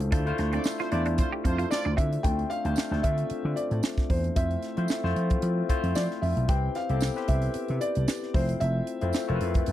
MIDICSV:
0, 0, Header, 1, 9, 480
1, 0, Start_track
1, 0, Tempo, 530504
1, 109, Time_signature, 4, 2, 24, 8
1, 8797, End_track
2, 0, Start_track
2, 0, Title_t, "Felt piano"
2, 0, Program_c, 0, 0
2, 1543, Note_on_c, 0, 74, 86
2, 1780, Note_on_c, 0, 76, 86
2, 1794, Note_off_c, 0, 74, 0
2, 2008, Note_off_c, 0, 76, 0
2, 2019, Note_on_c, 0, 79, 95
2, 2248, Note_off_c, 0, 79, 0
2, 2260, Note_on_c, 0, 77, 101
2, 2712, Note_off_c, 0, 77, 0
2, 2742, Note_on_c, 0, 76, 90
2, 3220, Note_on_c, 0, 74, 81
2, 3241, Note_off_c, 0, 76, 0
2, 3672, Note_off_c, 0, 74, 0
2, 3708, Note_on_c, 0, 72, 84
2, 3933, Note_off_c, 0, 72, 0
2, 3948, Note_on_c, 0, 76, 94
2, 5388, Note_on_c, 0, 74, 92
2, 5433, Note_off_c, 0, 76, 0
2, 5442, Note_off_c, 0, 74, 0
2, 5626, Note_on_c, 0, 76, 81
2, 5870, Note_on_c, 0, 79, 104
2, 5876, Note_off_c, 0, 76, 0
2, 6113, Note_on_c, 0, 77, 94
2, 6118, Note_off_c, 0, 79, 0
2, 6559, Note_off_c, 0, 77, 0
2, 6588, Note_on_c, 0, 76, 88
2, 7065, Note_on_c, 0, 74, 95
2, 7085, Note_off_c, 0, 76, 0
2, 7515, Note_off_c, 0, 74, 0
2, 7547, Note_on_c, 0, 72, 78
2, 7784, Note_on_c, 0, 76, 97
2, 7797, Note_off_c, 0, 72, 0
2, 8797, Note_off_c, 0, 76, 0
2, 8797, End_track
3, 0, Start_track
3, 0, Title_t, "Horn section"
3, 0, Program_c, 1, 61
3, 239, Note_on_c, 1, 60, 67
3, 240, Note_on_c, 1, 65, 65
3, 240, Note_on_c, 1, 69, 61
3, 240, Note_on_c, 1, 77, 71
3, 328, Note_off_c, 1, 60, 0
3, 328, Note_off_c, 1, 65, 0
3, 328, Note_off_c, 1, 69, 0
3, 328, Note_off_c, 1, 77, 0
3, 479, Note_on_c, 1, 57, 70
3, 479, Note_on_c, 1, 62, 78
3, 479, Note_on_c, 1, 65, 69
3, 479, Note_on_c, 1, 74, 85
3, 567, Note_off_c, 1, 57, 0
3, 567, Note_off_c, 1, 62, 0
3, 567, Note_off_c, 1, 74, 0
3, 568, Note_off_c, 1, 65, 0
3, 720, Note_on_c, 1, 57, 69
3, 723, Note_on_c, 1, 60, 77
3, 723, Note_on_c, 1, 65, 68
3, 723, Note_on_c, 1, 72, 84
3, 808, Note_off_c, 1, 57, 0
3, 810, Note_off_c, 1, 60, 0
3, 810, Note_off_c, 1, 65, 0
3, 810, Note_off_c, 1, 72, 0
3, 831, Note_on_c, 1, 62, 82
3, 831, Note_on_c, 1, 65, 76
3, 831, Note_on_c, 1, 74, 89
3, 833, Note_on_c, 1, 57, 84
3, 934, Note_off_c, 1, 65, 0
3, 935, Note_off_c, 1, 57, 0
3, 935, Note_off_c, 1, 62, 0
3, 935, Note_off_c, 1, 74, 0
3, 1067, Note_on_c, 1, 60, 83
3, 1067, Note_on_c, 1, 65, 84
3, 1067, Note_on_c, 1, 72, 91
3, 1070, Note_on_c, 1, 57, 72
3, 1172, Note_off_c, 1, 60, 0
3, 1172, Note_off_c, 1, 65, 0
3, 1172, Note_off_c, 1, 72, 0
3, 1174, Note_off_c, 1, 57, 0
3, 1309, Note_on_c, 1, 60, 90
3, 1309, Note_on_c, 1, 72, 98
3, 1311, Note_on_c, 1, 57, 99
3, 1311, Note_on_c, 1, 65, 99
3, 1501, Note_off_c, 1, 60, 0
3, 1501, Note_off_c, 1, 72, 0
3, 1503, Note_off_c, 1, 57, 0
3, 1503, Note_off_c, 1, 65, 0
3, 1549, Note_on_c, 1, 57, 106
3, 1549, Note_on_c, 1, 62, 100
3, 1549, Note_on_c, 1, 74, 109
3, 1551, Note_on_c, 1, 65, 100
3, 1741, Note_off_c, 1, 57, 0
3, 1742, Note_off_c, 1, 62, 0
3, 1742, Note_off_c, 1, 74, 0
3, 1743, Note_off_c, 1, 65, 0
3, 8797, End_track
4, 0, Start_track
4, 0, Title_t, "Tine electric piano"
4, 0, Program_c, 2, 4
4, 0, Control_c, 2, 64, 127
4, 0, Note_on_c, 2, 57, 73
4, 0, Note_on_c, 2, 62, 71
4, 0, Note_on_c, 2, 64, 67
4, 0, Note_on_c, 2, 65, 73
4, 0, Note_on_c, 2, 72, 88
4, 105, Note_off_c, 2, 57, 0
4, 105, Note_on_c, 2, 57, 84
4, 107, Note_off_c, 2, 62, 0
4, 107, Note_on_c, 2, 62, 78
4, 110, Note_off_c, 2, 64, 0
4, 110, Note_on_c, 2, 64, 75
4, 113, Note_off_c, 2, 65, 0
4, 113, Note_on_c, 2, 65, 79
4, 114, Note_off_c, 2, 72, 0
4, 114, Note_on_c, 2, 72, 90
4, 223, Note_off_c, 2, 57, 0
4, 224, Note_off_c, 2, 62, 0
4, 226, Note_off_c, 2, 64, 0
4, 227, Note_off_c, 2, 65, 0
4, 228, Note_off_c, 2, 72, 0
4, 235, Note_on_c, 2, 57, 85
4, 237, Note_on_c, 2, 62, 75
4, 239, Note_on_c, 2, 64, 72
4, 244, Note_on_c, 2, 65, 76
4, 246, Note_on_c, 2, 72, 82
4, 769, Note_off_c, 2, 57, 0
4, 770, Note_off_c, 2, 62, 0
4, 771, Note_off_c, 2, 64, 0
4, 774, Note_off_c, 2, 65, 0
4, 774, Note_off_c, 2, 72, 0
4, 823, Note_on_c, 2, 57, 71
4, 825, Note_on_c, 2, 62, 71
4, 827, Note_on_c, 2, 64, 69
4, 831, Note_on_c, 2, 65, 70
4, 833, Note_on_c, 2, 72, 75
4, 1693, Note_off_c, 2, 57, 0
4, 1693, Note_off_c, 2, 62, 0
4, 1695, Note_off_c, 2, 64, 0
4, 1697, Note_off_c, 2, 65, 0
4, 1698, Note_off_c, 2, 72, 0
4, 2021, Note_on_c, 2, 57, 68
4, 2024, Note_on_c, 2, 60, 65
4, 2027, Note_on_c, 2, 62, 60
4, 2029, Note_on_c, 2, 65, 59
4, 2033, Note_on_c, 2, 72, 70
4, 2041, Control_c, 2, 64, 0
4, 2178, Control_c, 2, 64, 127
4, 2354, Note_off_c, 2, 57, 0
4, 2355, Note_off_c, 2, 60, 0
4, 2357, Note_off_c, 2, 62, 0
4, 2358, Note_off_c, 2, 65, 0
4, 2360, Note_off_c, 2, 72, 0
4, 2394, Note_on_c, 2, 57, 66
4, 2396, Note_on_c, 2, 60, 60
4, 2398, Note_on_c, 2, 62, 58
4, 2402, Note_on_c, 2, 65, 61
4, 2403, Note_on_c, 2, 72, 81
4, 2610, Note_off_c, 2, 57, 0
4, 2610, Note_off_c, 2, 60, 0
4, 2612, Note_off_c, 2, 62, 0
4, 2613, Note_off_c, 2, 65, 0
4, 2614, Note_off_c, 2, 72, 0
4, 2633, Note_on_c, 2, 57, 68
4, 2636, Note_on_c, 2, 60, 62
4, 2638, Note_on_c, 2, 62, 62
4, 2640, Note_on_c, 2, 65, 65
4, 2642, Note_on_c, 2, 72, 73
4, 3486, Note_off_c, 2, 57, 0
4, 3488, Note_off_c, 2, 60, 0
4, 3489, Note_off_c, 2, 62, 0
4, 3490, Note_off_c, 2, 65, 0
4, 3491, Note_off_c, 2, 72, 0
4, 3945, Note_on_c, 2, 57, 63
4, 3946, Note_on_c, 2, 60, 61
4, 3949, Note_on_c, 2, 64, 58
4, 3952, Note_on_c, 2, 65, 58
4, 3955, Note_on_c, 2, 72, 70
4, 3964, Control_c, 2, 64, 0
4, 4123, Control_c, 2, 64, 127
4, 4276, Note_off_c, 2, 57, 0
4, 4277, Note_off_c, 2, 60, 0
4, 4278, Note_off_c, 2, 64, 0
4, 4280, Note_off_c, 2, 65, 0
4, 4281, Note_off_c, 2, 72, 0
4, 4314, Note_on_c, 2, 57, 70
4, 4319, Note_on_c, 2, 60, 64
4, 4320, Note_on_c, 2, 64, 61
4, 4322, Note_on_c, 2, 65, 60
4, 4325, Note_on_c, 2, 72, 81
4, 4530, Note_off_c, 2, 57, 0
4, 4532, Note_off_c, 2, 60, 0
4, 4533, Note_off_c, 2, 64, 0
4, 4534, Note_off_c, 2, 65, 0
4, 4536, Note_off_c, 2, 72, 0
4, 4554, Note_on_c, 2, 57, 79
4, 4557, Note_on_c, 2, 60, 69
4, 4558, Note_on_c, 2, 64, 79
4, 4563, Note_on_c, 2, 65, 83
4, 4565, Note_on_c, 2, 72, 88
4, 5089, Note_off_c, 2, 57, 0
4, 5091, Note_off_c, 2, 60, 0
4, 5092, Note_off_c, 2, 64, 0
4, 5094, Note_off_c, 2, 65, 0
4, 5095, Note_off_c, 2, 72, 0
4, 5147, Note_on_c, 2, 57, 88
4, 5148, Note_on_c, 2, 60, 77
4, 5153, Note_on_c, 2, 64, 76
4, 5154, Note_on_c, 2, 65, 88
4, 5158, Note_on_c, 2, 72, 97
4, 5799, Note_off_c, 2, 57, 0
4, 5799, Note_off_c, 2, 60, 0
4, 5802, Note_off_c, 2, 64, 0
4, 5802, Note_off_c, 2, 65, 0
4, 5804, Note_off_c, 2, 72, 0
4, 5867, Note_on_c, 2, 71, 65
4, 5871, Note_on_c, 2, 60, 68
4, 5872, Note_on_c, 2, 64, 63
4, 5875, Note_on_c, 2, 67, 67
4, 5878, Note_on_c, 2, 72, 71
4, 5884, Control_c, 2, 64, 0
4, 6064, Control_c, 2, 64, 127
4, 6198, Note_off_c, 2, 71, 0
4, 6200, Note_off_c, 2, 60, 0
4, 6200, Note_off_c, 2, 64, 0
4, 6202, Note_off_c, 2, 67, 0
4, 6203, Note_off_c, 2, 72, 0
4, 6236, Note_on_c, 2, 59, 65
4, 6239, Note_on_c, 2, 60, 64
4, 6243, Note_on_c, 2, 64, 62
4, 6245, Note_on_c, 2, 67, 68
4, 6249, Note_on_c, 2, 69, 82
4, 6451, Note_off_c, 2, 59, 0
4, 6453, Note_off_c, 2, 60, 0
4, 6455, Note_off_c, 2, 64, 0
4, 6456, Note_off_c, 2, 67, 0
4, 6458, Note_off_c, 2, 69, 0
4, 6479, Note_on_c, 2, 71, 72
4, 6482, Note_on_c, 2, 60, 65
4, 6484, Note_on_c, 2, 64, 65
4, 6487, Note_on_c, 2, 67, 67
4, 6489, Note_on_c, 2, 72, 76
4, 7330, Note_off_c, 2, 71, 0
4, 7332, Note_off_c, 2, 60, 0
4, 7333, Note_off_c, 2, 64, 0
4, 7334, Note_off_c, 2, 67, 0
4, 7336, Note_off_c, 2, 72, 0
4, 7544, Note_on_c, 2, 57, 76
4, 7546, Note_on_c, 2, 60, 72
4, 7549, Note_on_c, 2, 64, 69
4, 7551, Note_on_c, 2, 65, 71
4, 7555, Note_on_c, 2, 72, 76
4, 7564, Control_c, 2, 64, 0
4, 7705, Control_c, 2, 64, 127
4, 8089, Note_off_c, 2, 57, 0
4, 8090, Note_off_c, 2, 60, 0
4, 8092, Note_off_c, 2, 64, 0
4, 8093, Note_off_c, 2, 65, 0
4, 8095, Note_off_c, 2, 72, 0
4, 8155, Note_on_c, 2, 57, 73
4, 8157, Note_on_c, 2, 60, 71
4, 8160, Note_on_c, 2, 64, 63
4, 8162, Note_on_c, 2, 65, 63
4, 8164, Note_on_c, 2, 72, 72
4, 8371, Note_off_c, 2, 57, 0
4, 8373, Note_off_c, 2, 60, 0
4, 8374, Note_off_c, 2, 64, 0
4, 8375, Note_off_c, 2, 65, 0
4, 8376, Note_off_c, 2, 72, 0
4, 8395, Note_on_c, 2, 57, 85
4, 8399, Note_on_c, 2, 60, 75
4, 8401, Note_on_c, 2, 64, 79
4, 8404, Note_on_c, 2, 65, 78
4, 8406, Note_on_c, 2, 70, 78
4, 8458, Note_off_c, 2, 70, 0
4, 8464, Note_on_c, 2, 71, 94
4, 8797, Note_off_c, 2, 57, 0
4, 8797, Note_off_c, 2, 60, 0
4, 8797, Note_off_c, 2, 64, 0
4, 8797, Note_off_c, 2, 65, 0
4, 8797, Note_off_c, 2, 71, 0
4, 8797, End_track
5, 0, Start_track
5, 0, Title_t, "Clean electric guitar"
5, 0, Program_c, 3, 27
5, 111, Note_on_c, 3, 62, 84
5, 213, Note_off_c, 3, 62, 0
5, 482, Note_on_c, 3, 60, 72
5, 568, Note_off_c, 3, 60, 0
5, 723, Note_on_c, 3, 65, 75
5, 809, Note_off_c, 3, 65, 0
5, 958, Note_on_c, 3, 62, 73
5, 1046, Note_off_c, 3, 62, 0
5, 1198, Note_on_c, 3, 67, 74
5, 1287, Note_off_c, 3, 67, 0
5, 1434, Note_on_c, 3, 65, 65
5, 1524, Note_off_c, 3, 65, 0
5, 1674, Note_on_c, 3, 62, 66
5, 1764, Note_off_c, 3, 62, 0
5, 1783, Note_on_c, 3, 60, 70
5, 1889, Note_off_c, 3, 60, 0
5, 8797, End_track
6, 0, Start_track
6, 0, Title_t, "Slap bass"
6, 0, Program_c, 4, 36
6, 0, Note_on_c, 4, 37, 78
6, 111, Note_off_c, 4, 37, 0
6, 111, Note_on_c, 4, 38, 91
6, 278, Note_off_c, 4, 38, 0
6, 353, Note_on_c, 4, 38, 92
6, 520, Note_off_c, 4, 38, 0
6, 835, Note_on_c, 4, 40, 87
6, 1092, Note_off_c, 4, 40, 0
6, 1313, Note_on_c, 4, 41, 88
6, 1480, Note_off_c, 4, 41, 0
6, 1682, Note_on_c, 4, 38, 85
6, 1759, Note_off_c, 4, 38, 0
6, 1791, Note_on_c, 4, 50, 93
6, 1959, Note_off_c, 4, 50, 0
6, 2031, Note_on_c, 4, 38, 84
6, 2198, Note_off_c, 4, 38, 0
6, 2397, Note_on_c, 4, 38, 86
6, 2476, Note_off_c, 4, 38, 0
6, 2636, Note_on_c, 4, 38, 94
6, 2715, Note_off_c, 4, 38, 0
6, 2752, Note_on_c, 4, 50, 88
6, 2919, Note_off_c, 4, 50, 0
6, 3120, Note_on_c, 4, 50, 109
6, 3197, Note_off_c, 4, 50, 0
6, 3360, Note_on_c, 4, 45, 95
6, 3437, Note_off_c, 4, 45, 0
6, 3710, Note_on_c, 4, 40, 82
6, 3878, Note_off_c, 4, 40, 0
6, 3951, Note_on_c, 4, 41, 84
6, 4119, Note_off_c, 4, 41, 0
6, 4322, Note_on_c, 4, 53, 85
6, 4399, Note_off_c, 4, 53, 0
6, 4559, Note_on_c, 4, 41, 92
6, 4637, Note_off_c, 4, 41, 0
6, 4671, Note_on_c, 4, 53, 84
6, 4839, Note_off_c, 4, 53, 0
6, 4911, Note_on_c, 4, 53, 85
6, 5079, Note_off_c, 4, 53, 0
6, 5279, Note_on_c, 4, 41, 102
6, 5357, Note_off_c, 4, 41, 0
6, 5395, Note_on_c, 4, 53, 85
6, 5485, Note_off_c, 4, 53, 0
6, 5631, Note_on_c, 4, 41, 87
6, 5722, Note_off_c, 4, 41, 0
6, 5759, Note_on_c, 4, 35, 81
6, 5837, Note_off_c, 4, 35, 0
6, 5872, Note_on_c, 4, 36, 86
6, 6040, Note_off_c, 4, 36, 0
6, 6239, Note_on_c, 4, 36, 100
6, 6408, Note_off_c, 4, 36, 0
6, 6593, Note_on_c, 4, 36, 91
6, 6761, Note_off_c, 4, 36, 0
6, 6966, Note_on_c, 4, 48, 98
6, 7042, Note_off_c, 4, 48, 0
6, 7207, Note_on_c, 4, 36, 93
6, 7283, Note_off_c, 4, 36, 0
6, 7550, Note_on_c, 4, 29, 98
6, 7719, Note_off_c, 4, 29, 0
6, 7793, Note_on_c, 4, 29, 100
6, 7961, Note_off_c, 4, 29, 0
6, 8166, Note_on_c, 4, 41, 88
6, 8242, Note_off_c, 4, 41, 0
6, 8409, Note_on_c, 4, 29, 82
6, 8484, Note_off_c, 4, 29, 0
6, 8515, Note_on_c, 4, 41, 105
6, 8683, Note_off_c, 4, 41, 0
6, 8755, Note_on_c, 4, 41, 84
6, 8797, Note_off_c, 4, 41, 0
6, 8797, End_track
7, 0, Start_track
7, 0, Title_t, "Muted clean electric guitar strokes"
7, 352, Note_on_c, 9, 29, 43
7, 442, Note_off_c, 9, 29, 0
7, 832, Note_on_c, 9, 29, 42
7, 922, Note_off_c, 9, 29, 0
7, 1306, Note_on_c, 9, 29, 41
7, 1397, Note_off_c, 9, 29, 0
7, 1544, Note_on_c, 9, 29, 37
7, 1635, Note_off_c, 9, 29, 0
7, 8797, End_track
8, 0, Start_track
8, 0, Title_t, "Muted slap bass strokes"
8, 2994, Note_on_c, 9, 29, 44
8, 3085, Note_off_c, 9, 29, 0
8, 6834, Note_on_c, 9, 29, 41
8, 6925, Note_off_c, 9, 29, 0
8, 8797, End_track
9, 0, Start_track
9, 0, Title_t, "Drums"
9, 3, Note_on_c, 9, 42, 57
9, 94, Note_off_c, 9, 42, 0
9, 110, Note_on_c, 9, 42, 98
9, 111, Note_on_c, 9, 36, 113
9, 200, Note_off_c, 9, 42, 0
9, 201, Note_off_c, 9, 36, 0
9, 242, Note_on_c, 9, 42, 35
9, 332, Note_off_c, 9, 42, 0
9, 346, Note_on_c, 9, 42, 69
9, 353, Note_on_c, 9, 38, 32
9, 437, Note_off_c, 9, 42, 0
9, 444, Note_off_c, 9, 38, 0
9, 476, Note_on_c, 9, 42, 45
9, 566, Note_off_c, 9, 42, 0
9, 578, Note_on_c, 9, 54, 88
9, 593, Note_on_c, 9, 38, 110
9, 668, Note_off_c, 9, 54, 0
9, 684, Note_off_c, 9, 38, 0
9, 719, Note_on_c, 9, 42, 35
9, 726, Note_on_c, 9, 38, 34
9, 810, Note_off_c, 9, 42, 0
9, 816, Note_off_c, 9, 38, 0
9, 829, Note_on_c, 9, 42, 66
9, 920, Note_off_c, 9, 42, 0
9, 955, Note_on_c, 9, 42, 54
9, 1046, Note_off_c, 9, 42, 0
9, 1067, Note_on_c, 9, 42, 82
9, 1073, Note_on_c, 9, 36, 94
9, 1158, Note_off_c, 9, 42, 0
9, 1163, Note_off_c, 9, 36, 0
9, 1311, Note_on_c, 9, 36, 79
9, 1313, Note_on_c, 9, 42, 65
9, 1401, Note_off_c, 9, 36, 0
9, 1403, Note_off_c, 9, 42, 0
9, 1441, Note_on_c, 9, 42, 51
9, 1532, Note_off_c, 9, 42, 0
9, 1548, Note_on_c, 9, 54, 90
9, 1557, Note_on_c, 9, 38, 94
9, 1638, Note_off_c, 9, 54, 0
9, 1648, Note_off_c, 9, 38, 0
9, 1790, Note_on_c, 9, 36, 88
9, 1794, Note_on_c, 9, 42, 75
9, 1881, Note_off_c, 9, 36, 0
9, 1885, Note_off_c, 9, 42, 0
9, 1924, Note_on_c, 9, 42, 58
9, 2014, Note_off_c, 9, 42, 0
9, 2030, Note_on_c, 9, 36, 101
9, 2030, Note_on_c, 9, 42, 82
9, 2120, Note_off_c, 9, 36, 0
9, 2121, Note_off_c, 9, 42, 0
9, 2162, Note_on_c, 9, 42, 34
9, 2253, Note_off_c, 9, 42, 0
9, 2269, Note_on_c, 9, 42, 60
9, 2359, Note_off_c, 9, 42, 0
9, 2397, Note_on_c, 9, 42, 42
9, 2488, Note_off_c, 9, 42, 0
9, 2495, Note_on_c, 9, 54, 85
9, 2516, Note_on_c, 9, 38, 113
9, 2586, Note_off_c, 9, 54, 0
9, 2606, Note_off_c, 9, 38, 0
9, 2648, Note_on_c, 9, 38, 35
9, 2739, Note_off_c, 9, 38, 0
9, 2749, Note_on_c, 9, 42, 69
9, 2751, Note_on_c, 9, 36, 77
9, 2839, Note_off_c, 9, 42, 0
9, 2841, Note_off_c, 9, 36, 0
9, 2875, Note_on_c, 9, 42, 50
9, 2965, Note_off_c, 9, 42, 0
9, 2984, Note_on_c, 9, 42, 75
9, 3075, Note_off_c, 9, 42, 0
9, 3230, Note_on_c, 9, 42, 67
9, 3320, Note_off_c, 9, 42, 0
9, 3359, Note_on_c, 9, 42, 45
9, 3449, Note_off_c, 9, 42, 0
9, 3464, Note_on_c, 9, 54, 88
9, 3472, Note_on_c, 9, 38, 109
9, 3555, Note_off_c, 9, 54, 0
9, 3562, Note_off_c, 9, 38, 0
9, 3597, Note_on_c, 9, 36, 88
9, 3597, Note_on_c, 9, 42, 33
9, 3601, Note_on_c, 9, 38, 31
9, 3687, Note_off_c, 9, 42, 0
9, 3688, Note_off_c, 9, 36, 0
9, 3691, Note_off_c, 9, 38, 0
9, 3708, Note_on_c, 9, 36, 95
9, 3709, Note_on_c, 9, 46, 69
9, 3799, Note_off_c, 9, 36, 0
9, 3800, Note_off_c, 9, 46, 0
9, 3838, Note_on_c, 9, 42, 50
9, 3929, Note_off_c, 9, 42, 0
9, 3947, Note_on_c, 9, 42, 92
9, 3949, Note_on_c, 9, 36, 107
9, 4037, Note_off_c, 9, 42, 0
9, 4039, Note_off_c, 9, 36, 0
9, 4078, Note_on_c, 9, 42, 35
9, 4169, Note_off_c, 9, 42, 0
9, 4185, Note_on_c, 9, 42, 62
9, 4192, Note_on_c, 9, 38, 31
9, 4275, Note_off_c, 9, 42, 0
9, 4283, Note_off_c, 9, 38, 0
9, 4316, Note_on_c, 9, 42, 44
9, 4407, Note_off_c, 9, 42, 0
9, 4416, Note_on_c, 9, 54, 88
9, 4435, Note_on_c, 9, 38, 110
9, 4506, Note_off_c, 9, 54, 0
9, 4525, Note_off_c, 9, 38, 0
9, 4571, Note_on_c, 9, 38, 30
9, 4661, Note_off_c, 9, 38, 0
9, 4673, Note_on_c, 9, 42, 71
9, 4763, Note_off_c, 9, 42, 0
9, 4797, Note_on_c, 9, 42, 51
9, 4803, Note_on_c, 9, 36, 88
9, 4887, Note_off_c, 9, 42, 0
9, 4893, Note_off_c, 9, 36, 0
9, 4906, Note_on_c, 9, 42, 80
9, 4997, Note_off_c, 9, 42, 0
9, 5153, Note_on_c, 9, 36, 76
9, 5154, Note_on_c, 9, 42, 68
9, 5243, Note_off_c, 9, 36, 0
9, 5244, Note_off_c, 9, 42, 0
9, 5282, Note_on_c, 9, 42, 48
9, 5372, Note_off_c, 9, 42, 0
9, 5386, Note_on_c, 9, 54, 93
9, 5397, Note_on_c, 9, 38, 100
9, 5477, Note_off_c, 9, 54, 0
9, 5487, Note_off_c, 9, 38, 0
9, 5526, Note_on_c, 9, 38, 32
9, 5617, Note_off_c, 9, 38, 0
9, 5636, Note_on_c, 9, 46, 80
9, 5727, Note_off_c, 9, 46, 0
9, 5763, Note_on_c, 9, 42, 51
9, 5854, Note_off_c, 9, 42, 0
9, 5869, Note_on_c, 9, 42, 86
9, 5871, Note_on_c, 9, 36, 116
9, 5959, Note_off_c, 9, 42, 0
9, 5961, Note_off_c, 9, 36, 0
9, 6108, Note_on_c, 9, 42, 65
9, 6116, Note_on_c, 9, 38, 35
9, 6199, Note_off_c, 9, 42, 0
9, 6206, Note_off_c, 9, 38, 0
9, 6238, Note_on_c, 9, 42, 44
9, 6328, Note_off_c, 9, 42, 0
9, 6339, Note_on_c, 9, 54, 91
9, 6353, Note_on_c, 9, 38, 112
9, 6429, Note_off_c, 9, 54, 0
9, 6443, Note_off_c, 9, 38, 0
9, 6478, Note_on_c, 9, 42, 32
9, 6484, Note_on_c, 9, 38, 36
9, 6568, Note_off_c, 9, 42, 0
9, 6575, Note_off_c, 9, 38, 0
9, 6586, Note_on_c, 9, 42, 60
9, 6591, Note_on_c, 9, 36, 83
9, 6676, Note_off_c, 9, 42, 0
9, 6682, Note_off_c, 9, 36, 0
9, 6710, Note_on_c, 9, 42, 55
9, 6801, Note_off_c, 9, 42, 0
9, 6821, Note_on_c, 9, 42, 90
9, 6912, Note_off_c, 9, 42, 0
9, 6953, Note_on_c, 9, 42, 34
9, 7044, Note_off_c, 9, 42, 0
9, 7068, Note_on_c, 9, 42, 63
9, 7158, Note_off_c, 9, 42, 0
9, 7196, Note_on_c, 9, 42, 56
9, 7286, Note_off_c, 9, 42, 0
9, 7308, Note_on_c, 9, 54, 87
9, 7313, Note_on_c, 9, 38, 105
9, 7399, Note_off_c, 9, 54, 0
9, 7403, Note_off_c, 9, 38, 0
9, 7443, Note_on_c, 9, 38, 33
9, 7533, Note_off_c, 9, 38, 0
9, 7550, Note_on_c, 9, 36, 105
9, 7550, Note_on_c, 9, 46, 74
9, 7640, Note_off_c, 9, 36, 0
9, 7641, Note_off_c, 9, 46, 0
9, 7679, Note_on_c, 9, 42, 54
9, 7770, Note_off_c, 9, 42, 0
9, 7789, Note_on_c, 9, 42, 81
9, 7880, Note_off_c, 9, 42, 0
9, 8027, Note_on_c, 9, 42, 68
9, 8117, Note_off_c, 9, 42, 0
9, 8156, Note_on_c, 9, 42, 43
9, 8246, Note_off_c, 9, 42, 0
9, 8257, Note_on_c, 9, 54, 82
9, 8274, Note_on_c, 9, 38, 113
9, 8348, Note_off_c, 9, 54, 0
9, 8365, Note_off_c, 9, 38, 0
9, 8401, Note_on_c, 9, 42, 31
9, 8492, Note_off_c, 9, 42, 0
9, 8512, Note_on_c, 9, 42, 65
9, 8602, Note_off_c, 9, 42, 0
9, 8635, Note_on_c, 9, 42, 51
9, 8642, Note_on_c, 9, 36, 95
9, 8725, Note_off_c, 9, 42, 0
9, 8732, Note_off_c, 9, 36, 0
9, 8744, Note_on_c, 9, 42, 80
9, 8797, Note_off_c, 9, 42, 0
9, 8797, End_track
0, 0, End_of_file